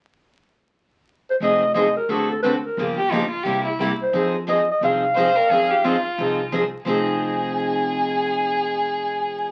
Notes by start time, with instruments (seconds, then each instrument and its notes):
1.31 clarinet C5
1.40 upright bass F1, steel-string acoustic guitar F3 C4 D#4 G#4, clarinet D#5
1.74 steel-string acoustic guitar F3 C4 D#4 G#4, clarinet D#5
1.97 clarinet A#4
2.09 upright bass D2, steel-string acoustic guitar D3 A3 C4 F#4 A4, clarinet G#4
2.31 clarinet A4
2.43 steel-string acoustic guitar D3 A3 C4 F#4 A4, clarinet B4
2.64 clarinet A#4
2.77 upright bass G1, steel-string acoustic guitar C#3 F3 A#3 F4 G4
2.97 violin G4
3.11 steel-string acoustic guitar C#3 F3 A#3 F4 G4, violin D#4
3.30 violin F4
3.44 upright bass C2, steel-string acoustic guitar C3 G3 A#3 E4 G4, violin G4
3.65 violin E4
3.79 steel-string acoustic guitar C3 G3 A#3 E4 G4
4.03 clarinet C5
4.13 upright bass F2, steel-string acoustic guitar F3 C4 D#4 G#4
4.48 steel-string acoustic guitar F3 C4 D#4 G#4, clarinet D#5
4.72 clarinet D#5
4.81 upright bass C2, steel-string acoustic guitar F3 C4 D#4 G#4, clarinet F5
5.16 steel-string acoustic guitar F3 C4 D#4 G#4, violin C5
5.36 violin A#4
5.49 upright bass F2, steel-string acoustic guitar F3 C4 D#4 G#4, violin G#4
5.71 violin G4
5.84 steel-string acoustic guitar F3 C4 D#4 G#4, violin F4
6.18 upright bass C2, steel-string acoustic guitar F3 C4 D#4 G#4
6.52 steel-string acoustic guitar F3 C4 D#4 G#4
6.85 upright bass F1, steel-string acoustic guitar F3 C4 D#4, violin G#4, clarinet G#5
6.89 steel-string acoustic guitar G#4